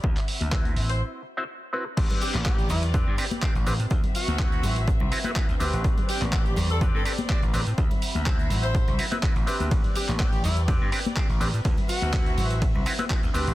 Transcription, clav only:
X:1
M:4/4
L:1/16
Q:"Swing 16ths" 1/4=124
K:Ador
V:1 name="Clav"
z4 [CEFB]6 z [CEFc] z2 [CEFB] z | [CDGB]4 [CDGB] z3 [CDGB]2 [CDGB] z [CDGc] z [CDGB] z | z4 [CEFB]6 [CEFB] [CEFB] [CEFB] z [CDGB]2- | [CDGB]4 [CDGB] z3 [CDGB]2 [CDGB] z [CDGc] z [CDGB] z |
z4 [CEFc]6 [CEFB] [CEFB] [CEFB] z [CDGB]2- | [CDGB]4 [CDGB] z3 [CDGB]2 [CDGB] z [CDGc] z [CDGB] z | z4 [CEFB]6 [CEFB] [CEFB] [CEFB] z [CDGB]2 |]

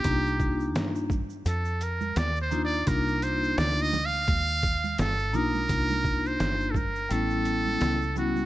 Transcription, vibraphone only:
X:1
M:4/4
L:1/8
Q:"Swing 16ths" 1/4=85
K:Cdor
V:1 name="Vibraphone"
[B,DEF]3 z4 [B,DEF] | [B,DEF]3 z4 [B,DEF] | [B,DEF]3 z [G,=B,^C=E]2 z [G,B,CE] |]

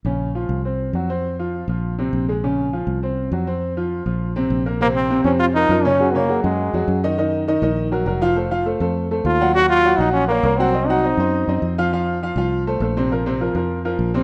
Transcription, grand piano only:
X:1
M:4/4
L:1/8
Q:1/4=202
K:Bbm
V:1 name="Grand piano"
[D,D]2 [F,F]2 [Cc]2 [G,G] [Cc]- | [Cc] [F,F]2 [F,F]2 [C,C]2 [A,A] | [D,D]2 [F,F]2 [Cc]2 [G,G] [Cc]- | [Cc] [F,F]2 [F,F]2 [C,C]2 [B,B] |
[C,Cc]2 [C,Cc] [C,Cc]2 [F,FB] [F,FB] [D,Dd] | [G,GA] [D,Dd] [G,GA] [G,GA]2 [G,GA]2 [E,Ee] | [E,Ee]2 [E,Ee] [E,Ee]2 [G,GB] [G,GB] [F,Ff] | [=A,=Ac] [F,Ff] [A,Ac] [A,Ac]2 [A,Ac]2 [G,Gg] |
[G,Gg]2 [G,Gg] [G,Gg]2 [B,Bd] [B,Bd] [G,Gg] | [Cce] [G,Gg] [Cce] [Cce]2 [Cce]2 [F,Ff] | [F,Ff]2 [F,Ff] [F,Ff]2 [=A,=Ac] [A,Ac] [C,Cc] | [F,FB] [C,Cc] [F,FB] [F,FB]2 [F,FB]2 [C,Cc] |]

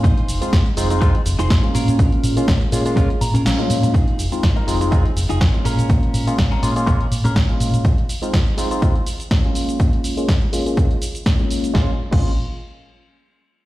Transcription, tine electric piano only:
X:1
M:4/4
L:1/16
Q:"Swing 16ths" 1/4=123
K:Bbm
V:1 name="Tine electric piano"
z3 [A,CEF] z2 [A,CEF] [A,CEF] [A,CEF] z4 [A,B,DF]3- | [A,B,DF]3 [A,B,DF] z2 [A,B,DF] [A,B,DF] [A,B,DF] z4 [A,B,DF]3 | z3 [A,CEF] z2 [A,CEF] [A,CEF] [A,CEF] z4 [A,B,DF]3- | [A,B,DF]3 [A,B,DF] z2 [A,B,DF] [A,B,DF] [A,B,DF] z4 [A,B,DF]3 |
z3 [A,CEF] z2 [A,CEF] [A,CEF] [A,CEF] z4 [A,B,DF]3- | [A,B,DF]3 [A,B,DF] z2 [A,B,DF] [A,B,DF] [A,B,DF] z4 [A,B,DF]3 | [A,B,DF] z2 [A,B,DF]2 z8 z3 |]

